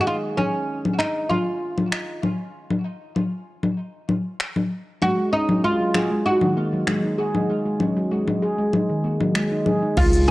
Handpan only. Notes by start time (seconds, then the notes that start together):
5.02 G#3
5.18 G#3
5.33 C#4
5.49 F#3
5.64 G#3
5.80 F#3
5.95 G#4
6.11 G#3
6.26 D#4
6.42 D#3
6.57 A#3
6.73 F#3
6.87 G#3
7.04 D#4
7.18 G#4
7.35 D#4
7.49 G#3
7.66 G#3
7.80 C#4
7.97 F#3
8.11 G#3
8.27 F#3
8.42 G#4
8.58 G#3
8.73 D#4
8.90 D#3
9.04 A#3
9.21 F#3
9.35 G#3
9.51 D#4
9.66 G#4
9.82 D#4
10.13 G#3